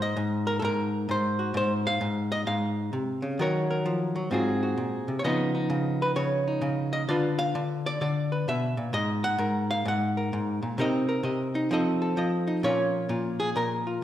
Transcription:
0.00 0.16 G#2 medium
0.00 0.50 G#3 soft
0.00 0.50 C4 soft
0.00 0.93 D#5 medium
0.17 0.62 G#2 medium
0.47 0.57 A#4 medium
0.59 1.07 G#2 medium
0.59 0.63 A4 medium
0.65 1.39 A#4 medium
1.09 1.53 G#2 medium
1.09 1.56 C5 medium
1.39 1.57 F#4 soft
1.54 2.00 G#2 medium
1.54 1.73 C5 medium
1.87 2.31 F5 loud
2.01 2.46 G#2 medium
2.32 2.41 D#5 loud
2.47 2.92 G#2 medium
2.47 3.39 F5 medium
2.93 3.23 C3 medium
3.22 3.38 C#3 medium
3.39 4.29 D#3 medium
3.39 4.14 F#3 medium
3.39 4.30 F#4 soft
3.39 3.70 A#4 medium
3.39 4.30 C#5 medium
3.70 4.33 A#4 soft
3.85 4.15 F3 medium
4.16 4.31 F#3 medium
4.31 4.77 G#2 medium
4.31 5.21 C4 soft
4.31 5.25 F4 soft
4.31 4.62 F#4 soft
4.31 5.19 G#4 soft
4.63 5.22 F#4 soft
4.77 5.07 A#2 medium
5.08 5.24 C3 medium
5.19 5.24 C#5 medium
5.24 5.68 C#3 medium
5.24 7.14 F3 soft
5.24 7.09 B3 soft
5.24 5.53 D#4 soft
5.24 6.00 D#5 medium
5.55 6.46 D#4 soft
5.70 6.15 C#3 medium
6.02 6.11 B4 medium
6.16 6.60 C#3 medium
6.16 6.92 C#5 medium
6.48 7.09 D#4 soft
6.62 7.06 C#3 medium
6.93 7.02 D#5 medium
7.09 7.54 D3 medium
7.09 8.91 D4 soft
7.09 8.92 F4 soft
7.09 8.31 B4 soft
7.09 7.38 D5 medium
7.39 7.85 F5 medium
7.55 8.00 D3 medium
7.86 8.00 D5 medium
8.01 8.47 D3 medium
8.01 8.47 D5 medium
8.32 8.92 B4 soft
8.48 8.77 B2 medium
8.48 8.93 E5 medium
8.77 8.93 A#2 medium
8.93 9.37 G#2 medium
8.93 9.09 D#5 medium
9.24 9.70 F#5 loud
9.38 9.84 G#2 medium
9.38 10.16 A#4 soft
9.71 9.86 F5 medium
9.85 10.31 G#2 medium
9.85 10.79 F#5 medium
10.17 10.77 A#4 soft
10.33 10.62 G#2 medium
10.63 10.78 A#2 medium
10.78 11.22 C3 medium
10.78 11.69 C4 medium
10.78 11.54 D#4 medium
10.78 11.07 A#4 medium
10.78 11.23 D#5 medium
11.09 11.69 A#4 medium
11.23 11.68 C3 medium
11.23 11.68 D#5 soft
11.55 11.69 D#4 medium
11.71 12.17 F3 medium
11.71 12.61 C4 medium
11.71 12.46 D#4 medium
11.71 12.01 A4 medium
11.71 12.16 D#5 medium
12.02 12.61 A4 soft
12.17 14.04 F3 medium
12.17 12.61 D#5 soft
12.47 12.61 D#4 soft
12.63 13.09 A#2 medium
12.63 14.04 A#3 soft
12.63 14.03 C#4 soft
12.63 13.10 F4 soft
12.63 13.39 C#5 medium
13.09 13.55 A#2 medium
13.09 13.86 F4 soft
13.40 13.49 G#4 medium
13.56 14.01 A#2 medium
13.56 14.04 A#4 medium
13.87 14.04 F4 soft

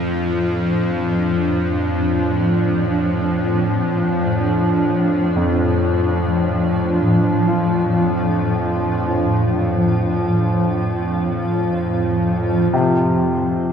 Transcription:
0.00 12.72 F2 medium
0.00 12.74 A2 medium
0.00 12.72 F3 medium
0.00 12.73 F3 medium
0.00 12.72 D4 medium
0.71 13.73 F4 medium
5.36 11.68 F2 medium
7.47 13.73 F4 medium
12.73 13.73 F2 medium
12.73 13.73 G#2 medium
12.73 13.73 C3 medium
12.73 13.73 F3 medium
12.73 13.73 C5 medium
12.92 13.73 G3 medium

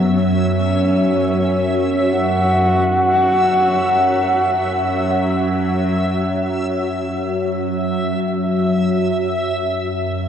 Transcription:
0.00 6.07 F#2 medium
0.00 6.07 F#3 medium
0.00 0.19 B3 medium
0.00 6.05 E5 medium
0.17 2.15 C#4 medium
2.13 5.08 F#4 medium
6.06 10.28 F#2 medium
6.06 10.28 F#3 medium
6.06 10.28 E5 medium

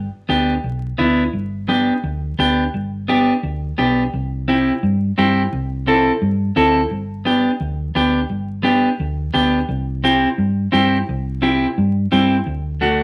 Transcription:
0.29 0.57 D2 medium
0.29 0.53 B3 medium
0.29 0.53 D4 medium
0.29 0.53 G4 medium
0.64 0.92 B1 medium
0.98 1.27 D2 medium
0.98 1.23 B3 medium
0.98 1.23 D4 medium
0.98 1.23 E4 medium
1.33 1.89 G1 loud
1.68 1.93 B3 medium
1.68 1.93 D4 medium
1.68 1.93 G4 medium
2.03 2.31 D2 loud
2.38 2.66 D2 medium
2.38 2.63 B3 medium
2.38 2.63 D4 medium
2.38 2.63 G4 loud
2.74 3.29 G1 loud
3.08 3.33 B3 medium
3.08 3.33 D4 medium
3.08 3.33 G4 medium
3.43 3.71 D2 loud
3.78 4.06 B1 medium
3.78 4.02 B3 medium
3.78 4.02 D4 medium
3.78 4.03 G4 medium
4.13 4.69 C2 medium
4.48 4.72 C4 medium
4.48 4.72 E4 medium
4.48 4.72 G4 medium
4.83 5.11 G2 loud
5.18 5.46 G2 medium
5.18 5.42 C4 medium
5.18 5.42 E4 medium
5.18 5.42 G4 medium
5.53 6.08 C2 loud
5.87 6.12 C4 medium
5.87 6.12 E4 medium
5.87 6.12 A4 medium
6.22 6.49 G2 loud
6.56 6.84 D2 medium
6.56 6.81 C4 medium
6.56 6.81 E4 medium
6.56 6.81 A4 medium
6.91 7.47 G1 medium
7.25 7.50 B3 medium
7.25 7.50 D4 medium
7.25 7.50 G4 medium
7.60 7.88 D2 medium
7.95 8.23 D2 loud
7.95 8.20 B3 medium
7.95 8.20 D4 medium
7.95 8.20 G4 medium
8.29 8.85 G1 medium
8.63 8.88 B3 medium
8.63 8.89 D4 medium
8.63 8.89 G4 medium
9.00 9.27 D2 loud
9.34 9.62 D2 medium
9.34 9.58 B3 medium
9.34 9.58 D4 medium
9.34 9.59 G4 medium
9.68 10.24 C2 loud
10.04 10.28 C4 medium
10.04 10.28 E4 medium
10.04 10.28 G4 medium
10.38 10.66 G2 medium
10.72 11.01 G2 medium
10.72 10.97 C4 medium
10.72 10.97 E4 medium
10.72 10.97 G4 medium
11.09 11.64 C2 loud
11.42 11.67 C4 medium
11.42 11.67 E4 medium
11.42 11.67 G4 medium
11.78 12.05 G2 loud
12.12 12.40 G2 medium
12.12 12.36 C4 medium
12.12 12.36 E4 medium
12.12 12.37 G4 medium
12.46 13.02 D2 medium
12.81 13.03 A3 medium
12.81 13.03 D4 medium
12.81 13.03 F#4 medium

